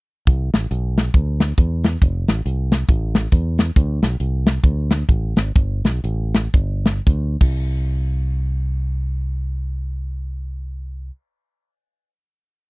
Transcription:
0.27 C2, kick, closed hi-hat
0.54 A1, snare, closed hi-hat
0.71 B1, closed hi-hat
0.98 snare, closed hi-hat
1.14 D2, kick, closed hi-hat
1.40 snare, closed hi-hat
1.58 E2, kick, closed hi-hat
1.84 snare, closed hi-hat
2.02 F1, kick, closed hi-hat
2.28 A1, snare, closed hi-hat
2.46 C2, closed hi-hat
2.72 snare, closed hi-hat
2.89 A1, kick, closed hi-hat
3.15 snare, closed hi-hat
3.32 E2, kick, closed hi-hat
3.58 snare, closed hi-hat
3.76 D2, kick, closed hi-hat
4.02 B1, snare, closed hi-hat
4.20 C2, closed hi-hat
4.47 snare, closed hi-hat
4.64 D2, kick, closed hi-hat
4.91 snare, closed hi-hat
5.09 A1, kick, closed hi-hat
5.36 G#1, snare, closed hi-hat
5.55 G1, kick, closed hi-hat
5.84 B1, snare, closed hi-hat
6.04 A1, closed hi-hat
6.35 snare, closed hi-hat
6.54 G1, kick, closed hi-hat
6.86 snare, closed hi-hat
7.07 D2, kick, closed hi-hat
7.41 C2, kick, crash

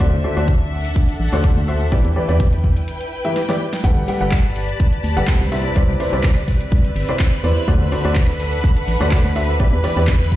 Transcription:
Already playing: C4 D5 E5
0.00 D3 D4 F#4 A4 C5 D5, kick, closed hi-hat
0.13 D2
0.22 D3 F#4 A4 C5 D5
0.37 D2 D3 F#4 A4 C5 D5
0.48 kick, closed hi-hat
0.64 F#5
0.85 closed hi-hat
0.96 kick, closed hi-hat
1.09 closed hi-hat
1.20 A1
1.33 D2 D3 F#4 A4 C5 D5, closed hi-hat
1.44 D3 F#4 A4 C5 D5, kick, closed hi-hat
1.57 D2
1.68 F#4 A4 C5 E5
1.92 E2 E3 E4 G4 B4 D5, kick, closed hi-hat
2.00 B4 G5
2.05 E2, closed hi-hat
2.16 E3 E4 G4 B4 D5
2.29 E2 E3 E4 G4 B4 D5, closed hi-hat
2.40 kick, closed hi-hat
2.53 closed hi-hat
2.64 kick
2.77 closed hi-hat
2.88 closed hi-hat
3.01 closed hi-hat
3.25 E3 E4 G4 B4 E5, closed hi-hat
3.36 snare, closed hi-hat
3.49 E3 E4 G4 B4 D5, snare
3.73 snare
3.84 G1 G3 G4 A4 B4 F#5 B5, kick, closed hi-hat, shaker
3.97 G1, shaker
4.07 G3 G4 A4 B4 D5 F#5, open hi-hat, shaker
4.21 G1 G3 G4 A4 B4 F#5, shaker
4.28 A5, clap
4.32 kick, closed hi-hat, shaker
4.45 B5, shaker
4.56 open hi-hat, shaker
4.69 closed hi-hat, shaker
4.80 kick, closed hi-hat, shaker
4.93 closed hi-hat, shaker
5.04 D2, open hi-hat, shaker
5.17 G1 G3 G4 A4 B4 F#5, closed hi-hat, shaker
5.27 C4 B4, kick, clap, closed hi-hat, shaker
5.41 C2, shaker
5.52 C3 C4 E4 B4 C5 E5, open hi-hat, shaker
5.65 shaker
5.76 C2 C3 E4 B4 C5 D5, kick, closed hi-hat, shaker
5.89 C2, shaker
6.00 C3 E4 B4 C5 D5 E5, open hi-hat, shaker
6.13 C2 C3 E4 B4 C5 D5, shaker
6.23 kick, clap, closed hi-hat, shaker
6.37 shaker
6.48 kick, open hi-hat, shaker
6.61 closed hi-hat, shaker
6.72 C2, kick, closed hi-hat, shaker
6.85 closed hi-hat, shaker
6.96 G1, open hi-hat, shaker
7.09 C3 E4 B4 C5 D5, closed hi-hat, shaker
7.19 kick, clap, closed hi-hat, shaker
7.33 shaker
7.44 E2 E4 B4 C5 D5, open hi-hat, shaker
7.57 open hi-hat, shaker
7.68 D2 D3 D4 F#4 A4 C5 D5, kick, closed hi-hat, shaker
7.73 A4
7.81 D2, shaker
7.92 D3 F#4 A4 C5 D5, open hi-hat, shaker
8.05 D2 D3 F#4 A4 C5 D5, shaker
8.15 kick, clap, closed hi-hat, shaker
8.21 F#5
8.29 shaker
8.40 open hi-hat, shaker
8.53 closed hi-hat, shaker
8.64 kick, closed hi-hat, shaker
8.77 closed hi-hat, shaker
8.88 A1, open hi-hat, shaker
9.01 D2 D3 F#4 A4 C5 D5, closed hi-hat, shaker
9.11 D3 F#4 A4 D5, kick, clap, closed hi-hat, shaker
9.25 D2, shaker
9.36 F#4 A4 C5 E5, open hi-hat, shaker
9.49 shaker
9.60 E2 E3 E4 G4 B4 D5, kick, closed hi-hat, shaker
9.73 E2, shaker
9.84 E3 E4 G4 B4 D5, open hi-hat, shaker
9.97 E2 E3 E4 G4 B4 D5, shaker
10.05 G5, kick, clap, closed hi-hat, shaker
10.21 shaker
10.32 kick, open hi-hat, shaker

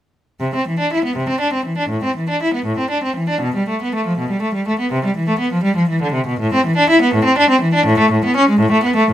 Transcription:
0.40 C3
0.55 C4
0.68 E3
0.79 D4
0.93 E4
1.05 B3
1.16 C3
1.29 C4
1.41 D4
1.53 C4
1.66 E3
1.78 D4
1.89 A2
2.04 C4
2.17 E3
2.29 D4
2.43 E4
2.54 B3
2.66 A2
2.78 C4
2.91 D4
3.03 C4
3.16 E3
3.29 D4
3.41 B2
3.56 G3
3.69 A3
3.82 B3
3.95 A3
4.07 F3
4.18 B2
4.31 G3
4.42 A3
4.54 G3
4.68 A3
4.79 B3
4.92 C3
5.05 G3
5.17 E3
5.29 A3
5.39 B3
5.53 F3
5.63 G3
5.76 F3
5.89 E3
6.02 D3
6.13 C3
6.27 B2
6.40 A2
6.54 C4
6.66 E3
6.77 D4
6.90 E4
7.02 B3
7.14 A2
7.25 C4
7.38 D4
7.50 C4
7.61 E3
7.74 D4
7.86 A2
7.99 A3
8.11 A2
8.25 B3
8.36 C#4
8.49 G#3
8.60 A2
8.71 A3
8.84 B3
8.96 A3

